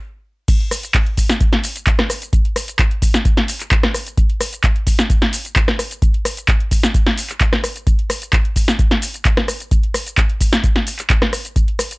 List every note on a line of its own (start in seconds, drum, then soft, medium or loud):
0.48 kick loud
0.48 closed hi-hat medium
0.48 crash loud
0.48 shaker soft
0.60 closed hi-hat soft
0.71 cross-stick medium
0.71 open hi-hat loud
0.71 shaker medium
0.83 closed hi-hat medium
0.83 shaker soft
0.94 kick loud
0.94 clap loud
0.94 closed hi-hat medium
0.94 shaker soft
1.06 closed hi-hat soft
1.17 kick medium
1.17 open hi-hat loud
1.17 shaker medium
1.30 snare medium
1.30 closed hi-hat medium
1.30 shaker soft
1.41 kick loud
1.41 closed hi-hat medium
1.41 shaker soft
1.53 snare medium
1.53 closed hi-hat soft
1.64 open hi-hat loud
1.64 shaker medium
1.76 closed hi-hat medium
1.76 shaker soft
1.87 kick loud
1.87 clap loud
1.87 closed hi-hat medium
1.87 shaker soft
1.99 cross-stick medium
1.99 snare medium
1.99 closed hi-hat soft
2.10 cross-stick medium
2.10 open hi-hat loud
2.10 shaker medium
2.22 closed hi-hat medium
2.22 shaker soft
2.33 kick loud
2.33 closed hi-hat medium
2.33 shaker soft
2.45 closed hi-hat soft
2.56 cross-stick medium
2.56 open hi-hat loud
2.56 shaker medium
2.68 closed hi-hat medium
2.68 shaker soft
2.79 kick loud
2.79 clap loud
2.79 closed hi-hat soft
2.79 shaker soft
2.91 closed hi-hat soft
3.02 kick medium
3.02 open hi-hat loud
3.02 shaker medium
3.14 snare medium
3.14 closed hi-hat medium
3.14 shaker soft
3.25 kick loud
3.25 closed hi-hat medium
3.25 shaker soft
3.37 snare medium
3.37 closed hi-hat soft
3.48 open hi-hat loud
3.48 shaker medium
3.60 clap soft
3.60 closed hi-hat medium
3.60 shaker soft
3.71 kick loud
3.71 clap loud
3.71 closed hi-hat medium
3.71 shaker soft
3.83 cross-stick medium
3.83 snare medium
3.83 closed hi-hat soft
3.94 cross-stick medium
3.94 open hi-hat loud
3.94 shaker medium
4.07 closed hi-hat medium
4.07 shaker soft
4.18 kick loud
4.18 closed hi-hat medium
4.18 shaker soft
4.30 closed hi-hat soft
4.41 cross-stick medium
4.41 open hi-hat loud
4.41 shaker medium
4.53 closed hi-hat medium
4.53 shaker soft
4.64 kick loud
4.64 clap loud
4.64 closed hi-hat medium
4.64 shaker soft
4.76 closed hi-hat soft
4.87 kick medium
4.87 open hi-hat loud
4.87 shaker medium
4.99 snare medium
4.99 closed hi-hat medium
4.99 shaker soft
5.10 kick loud
5.10 closed hi-hat medium
5.10 shaker soft
5.22 snare medium
5.22 closed hi-hat soft
5.33 open hi-hat loud
5.33 shaker medium
5.45 closed hi-hat medium
5.45 shaker soft
5.56 kick loud
5.56 clap loud
5.56 closed hi-hat medium
5.56 shaker soft
5.68 cross-stick medium
5.68 snare medium
5.68 closed hi-hat soft
5.79 cross-stick medium
5.79 open hi-hat loud
5.79 shaker medium
5.91 closed hi-hat medium
5.91 shaker soft
6.02 kick loud
6.02 closed hi-hat soft
6.02 shaker soft
6.14 closed hi-hat soft
6.25 cross-stick medium
6.25 open hi-hat loud
6.25 shaker medium
6.37 closed hi-hat medium
6.37 shaker soft
6.48 kick loud
6.48 clap loud
6.48 closed hi-hat soft
6.48 shaker soft
6.60 closed hi-hat soft
6.71 kick medium
6.71 open hi-hat loud
6.71 shaker medium
6.83 snare medium
6.83 closed hi-hat medium
6.83 shaker soft
6.94 kick loud
6.94 closed hi-hat soft
6.94 shaker soft
7.07 snare medium
7.07 closed hi-hat soft
7.18 open hi-hat loud
7.18 shaker medium
7.30 clap soft
7.30 closed hi-hat medium
7.30 shaker soft
7.41 kick loud
7.41 clap loud
7.41 closed hi-hat soft
7.41 shaker soft
7.53 cross-stick medium
7.53 snare medium
7.53 closed hi-hat soft
7.64 cross-stick medium
7.64 open hi-hat loud
7.64 shaker medium
7.76 closed hi-hat medium
7.76 shaker soft
7.87 kick loud
7.87 closed hi-hat soft
7.87 shaker soft
7.99 closed hi-hat soft
8.10 cross-stick medium
8.10 open hi-hat loud
8.10 shaker medium
8.22 closed hi-hat medium
8.22 shaker soft
8.33 kick loud
8.33 clap loud
8.33 closed hi-hat soft
8.33 shaker soft
8.45 closed hi-hat soft
8.56 kick medium
8.56 open hi-hat loud
8.56 shaker medium
8.68 snare medium
8.68 closed hi-hat medium
8.68 shaker soft
8.79 kick loud
8.79 closed hi-hat medium
8.79 shaker soft
8.91 snare medium
8.91 closed hi-hat soft
9.02 open hi-hat loud
9.02 shaker medium
9.14 closed hi-hat medium
9.14 shaker soft
9.25 kick loud
9.25 clap loud
9.25 closed hi-hat soft
9.25 shaker soft
9.37 cross-stick medium
9.37 snare medium
9.37 closed hi-hat soft
9.48 cross-stick medium
9.48 open hi-hat loud
9.48 shaker medium
9.60 closed hi-hat soft
9.60 shaker soft
9.71 kick loud
9.71 closed hi-hat medium
9.71 shaker soft
9.83 closed hi-hat soft
9.94 cross-stick medium
9.94 open hi-hat loud
9.94 shaker medium
10.06 closed hi-hat medium
10.06 shaker soft
10.17 kick loud
10.17 clap loud
10.17 closed hi-hat soft
10.17 shaker soft
10.30 closed hi-hat soft
10.41 kick medium
10.41 open hi-hat loud
10.41 shaker medium
10.53 snare medium
10.53 closed hi-hat medium
10.53 shaker soft
10.64 kick loud
10.64 closed hi-hat medium
10.64 shaker soft
10.76 snare medium
10.76 closed hi-hat soft
10.87 open hi-hat loud
10.87 shaker medium
10.99 clap soft
10.99 closed hi-hat medium
10.99 shaker soft
11.10 kick loud
11.10 clap loud
11.10 closed hi-hat medium
11.10 shaker soft
11.22 cross-stick medium
11.22 snare medium
11.22 closed hi-hat soft
11.33 cross-stick medium
11.33 open hi-hat loud
11.33 shaker medium
11.45 closed hi-hat medium
11.45 shaker soft
11.56 kick loud
11.56 closed hi-hat medium
11.56 shaker soft
11.68 closed hi-hat soft
11.79 cross-stick medium
11.79 open hi-hat loud
11.79 shaker medium
11.91 closed hi-hat medium
11.91 shaker soft